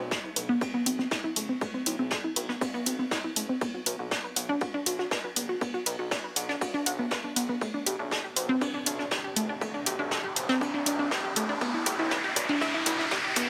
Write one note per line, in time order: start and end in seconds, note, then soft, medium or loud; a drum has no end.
0.00 0.19 B1 loud
0.11 0.19 A4 medium
0.11 kick loud
0.11 snare loud
0.11 ride medium
0.24 0.31 E4 medium
0.24 ride soft
0.36 0.56 B1 loud
0.36 0.44 B4 medium
0.36 open hi-hat loud
0.36 ride medium
0.49 0.56 B3 loud
0.61 0.72 C4 medium
0.61 kick loud
0.61 ride medium
0.74 0.81 B3 loud
0.86 1.06 B1 medium
0.86 0.91 C4 medium
0.86 open hi-hat loud
0.86 ride medium
0.99 1.06 C4 medium
0.99 snare soft
1.11 1.19 E4 medium
1.11 kick loud
1.11 snare loud
1.11 ride medium
1.24 1.31 E4 medium
1.36 1.56 F#1 medium
1.36 1.44 A3 medium
1.36 open hi-hat loud
1.36 ride medium
1.49 1.56 C4 medium
1.61 1.72 A3 medium
1.61 kick loud
1.61 ride medium
1.74 1.81 C4 medium
1.74 ride soft
1.86 1.96 B1 loud
1.86 1.94 E4 medium
1.86 open hi-hat loud
1.86 ride medium
1.99 2.19 B1 medium
1.99 2.10 C4 medium
2.10 2.19 A4 medium
2.10 kick loud
2.10 snare loud
2.10 ride medium
2.24 2.31 E4 medium
2.36 2.56 B1 loud
2.36 2.44 B4 medium
2.36 open hi-hat loud
2.36 ride medium
2.49 2.56 B3 loud
2.49 snare soft
2.61 2.72 C4 medium
2.61 kick loud
2.61 ride loud
2.74 2.81 B3 loud
2.74 ride soft
2.86 3.06 B1 medium
2.86 2.91 C4 medium
2.86 open hi-hat loud
2.86 ride medium
2.99 3.06 C4 medium
3.11 3.19 E4 medium
3.11 kick loud
3.11 snare loud
3.11 ride medium
3.24 3.31 E4 medium
3.36 3.56 F#1 medium
3.36 3.44 A3 medium
3.36 open hi-hat loud
3.36 ride medium
3.49 3.56 C4 medium
3.61 3.72 B3 medium
3.61 kick loud
3.61 ride medium
3.74 3.81 F#4 medium
3.86 3.96 B1 loud
3.86 3.94 B4 medium
3.86 open hi-hat loud
3.86 ride medium
3.99 4.19 B1 medium
3.99 4.10 F#4 medium
4.11 4.19 D5 medium
4.11 kick loud
4.11 snare loud
4.11 ride medium
4.24 4.31 B4 medium
4.24 ride soft
4.36 4.56 B1 medium
4.36 4.44 F#5 medium
4.36 open hi-hat loud
4.36 ride medium
4.49 4.56 D4 loud
4.61 4.72 F#4 medium
4.61 kick loud
4.61 ride medium
4.74 4.81 D4 loud
4.86 5.06 B1 medium
4.86 4.91 F#4 medium
4.86 open hi-hat loud
4.86 ride medium
4.99 5.06 F#4 medium
4.99 snare soft
5.11 5.19 B4 medium
5.11 kick loud
5.11 snare loud
5.11 ride medium
5.24 5.31 B4 medium
5.36 5.56 F#1 medium
5.36 5.44 B3 medium
5.36 open hi-hat loud
5.36 ride medium
5.49 5.56 F#4 medium
5.61 5.72 B3 medium
5.61 kick loud
5.61 ride medium
5.74 5.81 F#4 medium
5.74 ride soft
5.86 5.96 B1 loud
5.86 5.94 B4 medium
5.86 open hi-hat loud
5.86 ride medium
5.99 6.18 B1 medium
5.99 6.09 F#4 medium
6.11 6.19 D5 medium
6.11 kick loud
6.11 snare loud
6.11 ride medium
6.24 6.31 B4 medium
6.36 6.56 B1 loud
6.36 6.44 F#5 medium
6.36 open hi-hat loud
6.36 ride medium
6.49 6.56 D4 loud
6.49 snare soft
6.61 6.72 F#4 medium
6.61 kick loud
6.61 ride loud
6.74 6.81 D4 loud
6.74 ride soft
6.86 7.06 B1 loud
6.86 6.91 F#5 loud
6.86 open hi-hat loud
6.86 ride medium
6.99 7.03 B3 medium
7.11 7.19 B4 medium
7.11 kick loud
7.11 snare loud
7.11 ride medium
7.24 7.28 D4 medium
7.36 7.56 B1 medium
7.36 7.44 B3 medium
7.36 open hi-hat loud
7.36 ride medium
7.49 7.56 B3 medium
7.61 7.72 A3 medium
7.61 kick loud
7.61 ride medium
7.61 riser medium
7.74 7.81 D4 medium
7.86 7.96 B1 loud
7.86 7.94 G4 medium
7.86 open hi-hat loud
7.86 ride medium
7.99 8.19 B1 loud
7.99 8.10 D4 medium
8.11 8.19 A4 medium
8.11 kick medium
8.11 snare loud
8.11 ride medium
8.24 8.31 G4 medium
8.24 ride soft
8.36 8.56 B1 loud
8.36 8.44 C5 medium
8.36 open hi-hat loud
8.36 ride medium
8.49 8.56 C4 loud
8.61 8.72 D4 medium
8.61 kick loud
8.61 ride loud
8.74 8.84 D4 medium
8.86 9.06 B1 medium
8.86 8.91 D4 medium
8.86 open hi-hat loud
8.86 ride medium
8.99 9.06 D4 medium
8.99 snare soft
9.11 9.19 G4 medium
9.11 kick loud
9.11 snare loud
9.11 ride medium
9.24 9.31 G4 medium
9.36 9.56 F#1 medium
9.36 9.44 A3 medium
9.36 open hi-hat loud
9.36 ride medium
9.49 9.56 D4 medium
9.61 9.72 A3 medium
9.61 kick loud
9.61 ride medium
9.74 9.81 D4 medium
9.74 ride soft
9.86 9.96 B1 loud
9.86 9.94 G4 medium
9.86 open hi-hat loud
9.86 ride medium
9.99 10.18 B1 medium
9.99 10.09 D4 medium
10.11 10.19 A4 medium
10.11 kick loud
10.11 snare loud
10.11 ride medium
10.24 10.31 G4 medium
10.36 10.56 B1 loud
10.36 10.44 C5 medium
10.36 open hi-hat loud
10.36 ride medium
10.49 10.56 C4 loud
10.49 snare medium
10.61 10.72 D4 medium
10.61 kick loud
10.61 ride medium
10.74 10.84 D4 medium
10.74 ride soft
10.86 11.06 B1 medium
10.86 10.91 D4 medium
10.86 open hi-hat loud
10.86 ride medium
10.99 11.06 D4 medium
11.11 11.19 G4 medium
11.11 kick loud
11.11 snare loud
11.11 ride medium
11.24 11.31 G4 medium
11.36 11.56 F#1 medium
11.36 11.44 A3 medium
11.36 open hi-hat loud
11.36 ride medium
11.49 11.56 D4 medium
11.61 11.72 B3 medium
11.61 kick loud
11.61 ride loud
11.74 11.81 E4 medium
11.86 11.96 B1 loud
11.86 11.94 G4 medium
11.86 kick loud
11.86 open hi-hat loud
11.86 ride medium
11.99 12.19 B1 loud
11.99 12.09 E4 medium
12.11 12.19 B4 medium
12.11 kick loud
12.11 snare loud
12.11 ride medium
12.24 12.31 G4 medium
12.24 ride soft
12.36 12.56 B1 loud
12.36 12.44 D5 medium
12.36 kick loud
12.36 open hi-hat loud
12.36 ride medium
12.49 12.56 D4 loud
12.61 12.72 E4 medium
12.61 kick loud
12.61 ride loud
12.74 12.85 E4 medium
12.86 13.06 B1 medium
12.86 12.91 E4 medium
12.86 kick loud
12.86 open hi-hat loud
12.86 ride medium
12.99 13.06 E4 medium
12.99 snare soft
13.11 13.19 G4 medium
13.11 kick loud
13.11 snare loud
13.11 ride medium
13.24 13.31 G4 medium
13.36 13.50 F#1 medium
13.36 13.44 B3 medium
13.36 kick loud
13.36 open hi-hat medium
13.36 ride medium